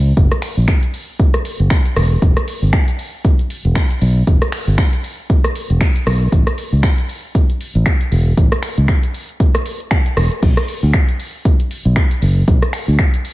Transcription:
Already playing: fingered electric bass C#2
0.17 fingered electric bass F#1, kick, closed hi-hat
0.31 cross-stick, closed hi-hat
0.42 finger snap, open hi-hat
0.57 fingered electric bass A#1
0.68 finger snap, kick, closed hi-hat
0.83 closed hi-hat
0.94 open hi-hat
1.19 kick, closed hi-hat
1.34 cross-stick, closed hi-hat
1.45 open hi-hat
1.60 fingered electric bass F#1, closed hi-hat
1.70 finger snap, kick, closed hi-hat
1.85 closed hi-hat
1.96 fingered electric bass E1, cross-stick, open hi-hat
2.22 fingered electric bass E1, kick, closed hi-hat
2.37 cross-stick, closed hi-hat
2.48 open hi-hat
2.62 fingered electric bass G1
2.73 finger snap, kick, closed hi-hat
2.88 closed hi-hat
2.99 open hi-hat
3.25 kick, closed hi-hat
3.39 closed hi-hat
3.50 open hi-hat
3.65 fingered electric bass E1, closed hi-hat
3.75 finger snap, kick, closed hi-hat
3.90 closed hi-hat
4.02 fingered electric bass B1, open hi-hat
4.27 kick, closed hi-hat
4.42 cross-stick, closed hi-hat
4.52 finger snap, open hi-hat
4.67 fingered electric bass G1
4.78 finger snap, kick, closed hi-hat
4.93 closed hi-hat
5.04 open hi-hat
5.30 kick, closed hi-hat
5.44 cross-stick, closed hi-hat
5.55 open hi-hat
5.70 fingered electric bass E1, closed hi-hat
5.81 finger snap, kick, closed hi-hat
5.96 closed hi-hat
6.07 fingered electric bass B1, cross-stick, open hi-hat
6.32 fingered electric bass A1, kick, closed hi-hat
6.47 cross-stick, closed hi-hat
6.58 open hi-hat
6.72 fingered electric bass C#2
6.83 finger snap, kick, closed hi-hat
6.98 closed hi-hat
7.09 open hi-hat
7.35 kick, closed hi-hat
7.50 closed hi-hat
7.61 open hi-hat
7.75 fingered electric bass A1, closed hi-hat
7.86 finger snap, kick, closed hi-hat
8.01 closed hi-hat
8.12 fingered electric bass E1, open hi-hat
8.37 fingered electric bass A1, kick, closed hi-hat
8.52 cross-stick, closed hi-hat
8.63 finger snap, open hi-hat
8.78 fingered electric bass C#2, closed hi-hat
8.88 finger snap, kick, closed hi-hat
9.03 closed hi-hat
9.14 open hi-hat
9.29 closed hi-hat
9.40 kick, closed hi-hat
9.55 cross-stick, closed hi-hat
9.66 open hi-hat
9.80 closed hi-hat
9.91 finger snap, kick, closed hi-hat
10.06 closed hi-hat
10.17 fingered electric bass E1, cross-stick, open hi-hat
10.32 closed hi-hat
10.43 fingered electric bass B1, kick, closed hi-hat, crash
10.57 cross-stick, closed hi-hat
10.68 open hi-hat
10.83 fingered electric bass D2
10.93 finger snap, kick, closed hi-hat
11.08 closed hi-hat
11.20 open hi-hat
11.45 kick, closed hi-hat
11.60 closed hi-hat
11.71 open hi-hat
11.85 fingered electric bass B1, closed hi-hat
11.96 finger snap, kick, closed hi-hat
12.11 closed hi-hat
12.22 fingered electric bass F#1, open hi-hat
12.48 fingered electric bass B1, kick, closed hi-hat
12.62 cross-stick, closed hi-hat
12.73 finger snap, open hi-hat
12.88 fingered electric bass D2
12.99 finger snap, kick, closed hi-hat
13.14 closed hi-hat
13.25 open hi-hat

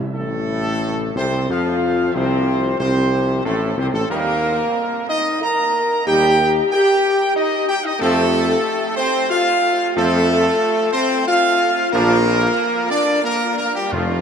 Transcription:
0.00 timpani C3
0.14 tuba A1, trombone section A2, french horn section A3, trumpet section A4
1.15 tuba C2, trombone section C3, french horn section C4, trumpet section C5
1.49 tuba F2, trombone section F3, french horn section F4, trumpet section F5
2.14 tuba C2, trombone section C3, french horn section C4, trumpet section C5
2.79 tuba C2, trombone section C3, french horn section C4, trumpet section C5
3.44 tuba A1, trombone section A2, french horn section A3, trumpet section A4
3.77 tuba C2, trombone section C3, french horn section C4, trumpet section C5
3.93 tuba A1, trombone section A2, french horn section A3, trumpet section A4
4.10 tuba D#2, trombone section G3 D#4, french horn section A#3, trumpet section A#4
5.08 french horn section D#4, trumpet section D#5
5.42 french horn section A#4, trumpet section A#5
6.06 tuba D#2, trombone section G3 D#4, french horn section G4, trumpet section G5
6.71 french horn section G4, trumpet section G5
7.36 french horn section D#4, trumpet section D#5
7.68 french horn section G4, trumpet section G5
7.85 french horn section D#4, trumpet section D#5
7.99 tuba F2, trombone section F3 C4, french horn section A3, trumpet section A4
8.97 french horn section C4, trumpet section C5
9.30 french horn section F4, trumpet section F5
9.96 tuba F2, trombone section F3 C4, french horn section A3, trumpet section A4
10.92 french horn section C4, trumpet section C5
11.27 french horn section F4, trumpet section F5
11.92 tuba A#1, trombone section F3 D4, french horn section A#3, trumpet section A#4
12.91 french horn section D4, trumpet section D5
13.24 french horn section A#3, trumpet section A#4
13.58 french horn section A#3, trumpet section A#4
13.75 french horn section G3, trumpet section G4
13.92 tuba F1, timpani F2, french horn section F3, trombone section F3 A3, trumpet section F4

